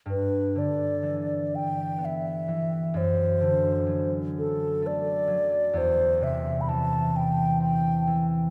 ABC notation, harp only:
X:1
M:3/4
L:1/8
Q:1/4=64
K:G
V:1 name="Harp" clef=bass
G,, D, E,2 B, E, | F,, D, F,2 A, F, | E,, C, E,2 C E, |]